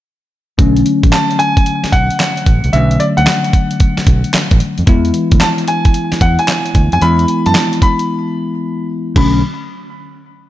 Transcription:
0.58 fingered electric bass B1, tine electric piano D3 F#3 A3 C#4, kick, closed hi-hat
0.77 closed hi-hat
0.86 closed hi-hat
1.03 fingered electric bass A1, kick, closed hi-hat
1.12 grand piano A5, snare, clap, closed hi-hat
1.31 closed hi-hat
1.39 grand piano G#5, closed hi-hat
1.57 kick, closed hi-hat
1.66 closed hi-hat
1.84 muted fingered electric bass stroke, snare, closed hi-hat
1.92 fingered electric bass B1, grand piano F#5, kick, closed hi-hat
2.10 closed hi-hat
2.19 snare, clap, closed hi-hat
2.37 closed hi-hat
2.46 fingered electric bass A1, kick, closed hi-hat
2.64 fingered electric bass C2, closed hi-hat
2.72 fingered electric bass B1, tine electric piano D3 F#3 A3 C#4, grand piano E5, closed hi-hat
2.91 closed hi-hat
3.00 grand piano D5, closed hi-hat
3.17 fingered electric bass D2, grand piano F#5, closed hi-hat
3.27 snare, clap, closed hi-hat
3.44 closed hi-hat
3.53 kick, closed hi-hat
3.71 closed hi-hat
3.80 kick, closed hi-hat
3.97 muted fingered electric bass stroke, snare, closed hi-hat
4.07 fingered electric bass B1, kick, closed hi-hat
4.24 closed hi-hat
4.33 muted fingered electric bass stroke, snare, clap, closed hi-hat
4.51 fingered electric bass A1, kick, closed hi-hat
4.60 closed hi-hat
4.78 fingered electric bass F2, closed hi-hat
4.86 fingered electric bass E2, tine electric piano E3 G#3 B3 E4, kick, closed hi-hat
5.05 closed hi-hat
5.14 closed hi-hat
5.31 fingered electric bass D2, kick, closed hi-hat
5.40 grand piano A5, snare, clap, closed hi-hat
5.58 closed hi-hat
5.68 grand piano G#5, closed hi-hat
5.85 kick, closed hi-hat
5.94 closed hi-hat
6.12 muted fingered electric bass stroke, snare, closed hi-hat
6.21 fingered electric bass E2, grand piano F#5, kick, closed hi-hat
6.39 grand piano G#5, closed hi-hat
6.48 snare, clap, closed hi-hat
6.66 closed hi-hat
6.75 fingered electric bass D2, kick, closed hi-hat
6.92 fingered electric bass F2, grand piano G#5, closed hi-hat
7.01 fingered electric bass E2, tine electric piano E3 G#3 B3 E4, grand piano B5, closed hi-hat
7.19 closed hi-hat
7.28 closed hi-hat
7.46 fingered electric bass F#2, grand piano A5, closed hi-hat
7.55 snare, clap, closed hi-hat
7.73 closed hi-hat
7.82 grand piano B5, kick, closed hi-hat
7.99 closed hi-hat
9.16 fingered electric bass B1, tine electric piano D3 F#3 A3 C#4, grand piano B5, kick, crash

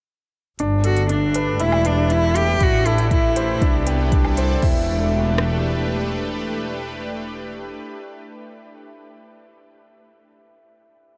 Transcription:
0.59 double bass section G1, analog synth pad A3, grand piano D4, closed hi-hat
0.84 cello F#4, grand piano A4, closed hi-hat
0.97 closed hi-hat
1.03 analog synth pad D4 G4 B4
1.09 grand piano D4, cello D4, closed hi-hat
1.34 grand piano B4, closed hi-hat
1.60 double bass section E1, grand piano E4, cello E4, closed hi-hat
1.72 low woodblock
1.85 cello D4, grand piano B4, closed hi-hat
2.10 grand piano E4, cello E4, closed hi-hat
2.35 cello G4, grand piano E5, closed hi-hat
2.60 double bass section A1, grand piano E4, cello F#4, kick, closed hi-hat
2.86 cello E4, grand piano A4, closed hi-hat
2.98 closed hi-hat
3.11 grand piano E4, cello E4, kick, closed hi-hat
3.36 grand piano C5, closed hi-hat
3.62 double bass section C2, analog synth pad B3, grand piano D4, kick, closed hi-hat
3.87 grand piano G4, closed hi-hat
4.07 analog synth pad E4 A4 D5
4.12 grand piano D4, kick, closed hi-hat
4.25 low woodblock
4.37 grand piano C5, closed hi-hat
4.62 double bass section E1, analog synth pad A3, grand piano E4, kick, crash
4.70 analog synth pad D4
4.78 analog synth pad G4
4.85 analog synth pad B4
5.38 cross-stick

